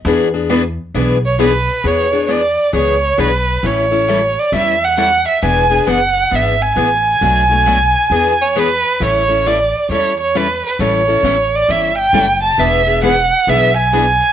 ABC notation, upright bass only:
X:1
M:4/4
L:1/8
Q:"Swing" 1/4=134
K:Emix
V:1 name="Upright bass" clef=bass
E,,4 B,,,4 | E,,4 C,,2 B,,,2 | A,,,4 E,,4 | E,,,2 F,,,2 G,,,2 A,,,2 |
B,,,4 E,,4 | A,,,4 E,,4 | A,,,2 A,,,2 =G,,,2 F,,,2 | E,,,4 B,,,4 |]